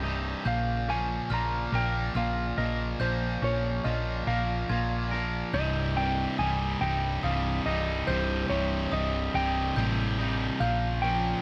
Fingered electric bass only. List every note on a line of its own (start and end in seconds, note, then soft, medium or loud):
0.00 0.34 C1 medium
0.46 1.18 A#1 medium
1.30 1.67 A#1 medium
1.72 2.09 A#1 medium
2.15 2.51 A#1 medium
2.58 2.94 A#1 medium
3.00 3.36 A#1 medium
3.42 3.79 A#1 medium
3.85 4.21 A#1 medium
4.27 4.63 A#1 medium
4.70 5.42 A#1 medium
5.53 6.26 C1 medium
6.38 6.75 C1 medium
6.81 7.17 C1 medium
7.23 7.60 C1 medium
7.66 8.02 C1 medium
8.08 8.44 C1 medium
8.50 8.86 C1 medium
8.92 9.28 C1 medium
9.34 9.71 C1 medium
9.76 10.49 A1 medium
10.60 11.33 A#1 medium